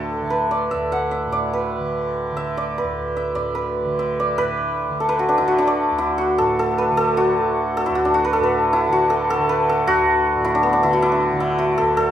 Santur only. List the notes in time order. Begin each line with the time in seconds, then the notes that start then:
Already playing: F#4 A4 B4 D5 E5 F#5
0.30 B4
0.51 D5
0.71 E5
0.92 F#5
1.11 E5
1.32 D5
1.53 B4
2.37 E5
2.57 D5
2.78 B4
3.17 E5
3.35 D5
3.55 B4
3.99 E5
4.20 D5
4.38 B4
5.00 A4
5.09 B4
5.19 F#4
5.29 D4
5.38 E4
5.48 F#4
5.58 D4
5.67 D5
5.98 E4
6.18 F#4
6.38 A4
6.59 A4
6.78 B4
6.97 A4
7.17 F#4
7.77 A4
7.86 E4
7.95 F#4
8.05 D4
8.14 F#4
8.25 B4
8.33 A4
8.43 B4
8.73 E4
8.93 F#4
9.10 A4
9.30 A4
9.49 B4
9.69 A4
9.87 F#4
10.45 E4
10.55 D4
10.63 B3
10.73 D4
10.83 E4
10.93 F#4
11.02 E4
11.12 D4
11.40 E4
11.59 F#4
11.78 A4
11.97 A4